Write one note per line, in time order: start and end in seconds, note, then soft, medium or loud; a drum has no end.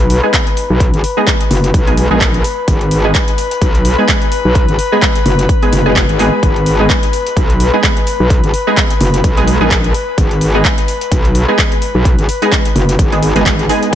0.00 0.21 B1 medium
0.00 13.95 B4 medium
0.10 open hi-hat loud
0.23 1.14 G#3 medium
0.23 1.14 B3 medium
0.23 1.14 D#4 medium
0.23 1.14 G#4 medium
0.33 kick loud
0.33 clap loud
0.33 closed hi-hat medium
0.47 closed hi-hat soft
0.57 open hi-hat medium
0.70 0.91 B1 loud
0.80 kick loud
0.80 closed hi-hat medium
0.94 1.02 G#1 loud
0.94 closed hi-hat soft
1.04 open hi-hat loud
1.17 1.34 G#3 medium
1.17 1.34 B3 medium
1.17 1.34 D#4 medium
1.17 1.34 G#4 medium
1.27 kick loud
1.27 clap loud
1.27 closed hi-hat medium
1.41 closed hi-hat medium
1.51 1.72 F#1 medium
1.51 open hi-hat medium
1.64 closed hi-hat medium
1.74 2.09 B1 medium
1.74 kick loud
1.74 closed hi-hat medium
1.87 2.04 G#3 medium
1.87 2.04 B3 medium
1.87 2.04 D#4 medium
1.87 2.04 G#4 medium
1.87 closed hi-hat soft
1.97 open hi-hat loud
2.11 2.43 A#1 loud
2.11 2.20 G#3 medium
2.11 2.20 B3 medium
2.11 2.20 D#4 medium
2.11 2.20 G#4 medium
2.21 kick loud
2.21 clap loud
2.21 closed hi-hat medium
2.34 closed hi-hat soft
2.44 open hi-hat medium
2.68 3.13 G#1 medium
2.68 kick loud
2.68 closed hi-hat medium
2.81 closed hi-hat soft
2.91 open hi-hat loud
3.05 3.14 G#3 medium
3.05 3.14 B3 medium
3.05 3.14 D#4 medium
3.05 3.14 G#4 medium
3.15 kick loud
3.15 clap loud
3.15 closed hi-hat medium
3.28 closed hi-hat soft
3.38 open hi-hat medium
3.51 closed hi-hat soft
3.62 3.96 B1 loud
3.62 kick loud
3.62 closed hi-hat medium
3.75 closed hi-hat soft
3.85 open hi-hat loud
3.98 4.89 G#3 medium
3.98 4.89 B3 medium
3.98 4.89 D#4 medium
3.98 4.89 G#4 medium
4.08 kick loud
4.08 clap loud
4.08 closed hi-hat medium
4.22 closed hi-hat soft
4.32 open hi-hat medium
4.45 4.66 B1 loud
4.55 kick loud
4.55 closed hi-hat medium
4.69 4.77 G#1 loud
4.69 closed hi-hat soft
4.79 open hi-hat loud
4.92 5.09 G#3 medium
4.92 5.09 B3 medium
4.92 5.09 D#4 medium
4.92 5.09 G#4 medium
5.02 kick loud
5.02 clap loud
5.02 closed hi-hat medium
5.16 closed hi-hat soft
5.26 5.47 F#1 medium
5.26 open hi-hat medium
5.39 closed hi-hat soft
5.49 kick loud
5.49 closed hi-hat medium
5.62 5.79 G#3 medium
5.62 5.79 B3 medium
5.62 5.79 D#4 medium
5.62 5.79 G#4 medium
5.62 closed hi-hat soft
5.73 6.07 F#1 medium
5.73 open hi-hat loud
5.86 6.02 G#3 medium
5.86 6.02 B3 medium
5.86 6.02 D#4 medium
5.86 6.02 G#4 loud
5.96 kick loud
5.96 clap loud
5.96 closed hi-hat medium
6.09 6.31 G#1 medium
6.09 closed hi-hat soft
6.19 6.38 G#3 loud
6.19 6.38 B3 medium
6.19 6.38 D#4 medium
6.19 6.38 G#4 loud
6.19 open hi-hat medium
6.43 6.88 G#1 loud
6.43 kick loud
6.43 closed hi-hat medium
6.56 closed hi-hat soft
6.66 open hi-hat loud
6.80 6.89 G#3 medium
6.80 6.89 B3 medium
6.80 6.89 D#4 medium
6.80 6.89 G#4 medium
6.90 kick loud
6.90 clap loud
6.90 closed hi-hat medium
7.03 closed hi-hat medium
7.13 open hi-hat medium
7.27 closed hi-hat soft
7.37 7.71 B1 medium
7.37 kick loud
7.37 closed hi-hat medium
7.50 closed hi-hat soft
7.60 open hi-hat loud
7.73 8.64 G#3 medium
7.73 8.64 B3 medium
7.73 8.64 D#4 medium
7.73 8.64 G#4 medium
7.83 kick loud
7.83 clap loud
7.83 closed hi-hat medium
7.97 closed hi-hat soft
8.07 open hi-hat medium
8.20 8.41 B1 loud
8.30 kick loud
8.30 closed hi-hat medium
8.44 8.52 G#1 loud
8.44 closed hi-hat soft
8.54 open hi-hat loud
8.67 8.84 G#3 medium
8.67 8.84 B3 medium
8.67 8.84 D#4 medium
8.67 8.84 G#4 medium
8.77 kick loud
8.77 clap loud
8.77 closed hi-hat medium
8.90 closed hi-hat medium
9.01 9.22 F#1 medium
9.01 open hi-hat medium
9.14 closed hi-hat medium
9.24 9.59 B1 loud
9.24 kick loud
9.24 closed hi-hat medium
9.37 9.54 G#3 medium
9.37 9.54 B3 medium
9.37 9.54 D#4 medium
9.37 9.54 G#4 medium
9.37 closed hi-hat soft
9.48 open hi-hat loud
9.61 9.93 A#1 medium
9.61 9.70 G#3 medium
9.61 9.70 B3 medium
9.61 9.70 D#4 medium
9.61 9.70 G#4 medium
9.71 kick loud
9.71 clap loud
9.71 closed hi-hat medium
9.84 closed hi-hat soft
9.94 open hi-hat medium
10.18 10.63 G#1 medium
10.18 kick loud
10.18 closed hi-hat medium
10.31 closed hi-hat soft
10.41 open hi-hat loud
10.54 10.64 G#3 medium
10.54 10.64 B3 medium
10.54 10.64 D#4 medium
10.54 10.64 G#4 medium
10.65 kick loud
10.65 clap loud
10.65 closed hi-hat medium
10.78 closed hi-hat medium
10.88 open hi-hat medium
11.01 closed hi-hat medium
11.12 11.46 B1 medium
11.12 kick loud
11.12 closed hi-hat medium
11.25 closed hi-hat soft
11.35 open hi-hat loud
11.48 12.39 G#3 medium
11.48 12.39 B3 medium
11.48 12.39 D#4 medium
11.48 12.39 G#4 medium
11.58 kick loud
11.58 clap loud
11.58 closed hi-hat medium
11.72 closed hi-hat soft
11.82 open hi-hat medium
11.95 12.16 B1 loud
12.05 kick loud
12.05 closed hi-hat medium
12.18 12.27 G#1 loud
12.18 closed hi-hat soft
12.29 open hi-hat loud
12.42 12.59 G#3 medium
12.42 12.59 B3 medium
12.42 12.59 D#4 medium
12.42 12.59 G#4 medium
12.42 closed hi-hat soft
12.52 kick loud
12.52 clap loud
12.52 closed hi-hat medium
12.65 closed hi-hat medium
12.76 12.97 F#1 medium
12.76 open hi-hat medium
12.89 closed hi-hat medium
12.99 13.34 G#1 medium
12.99 kick loud
12.99 closed hi-hat medium
13.12 13.29 G#3 medium
13.12 13.29 B3 medium
13.12 13.29 D#4 medium
13.12 13.29 G#4 medium
13.12 closed hi-hat soft
13.23 open hi-hat loud
13.36 13.44 G#1 medium
13.36 13.52 G#3 medium
13.36 13.52 B3 medium
13.36 13.52 D#4 medium
13.36 13.52 G#4 loud
13.36 closed hi-hat soft
13.46 13.68 G#1 medium
13.46 kick medium
13.46 clap loud
13.46 closed hi-hat medium
13.59 closed hi-hat soft
13.69 13.88 G#3 loud
13.69 13.88 B3 medium
13.69 13.88 D#4 medium
13.69 13.88 G#4 loud
13.69 open hi-hat medium
13.83 closed hi-hat soft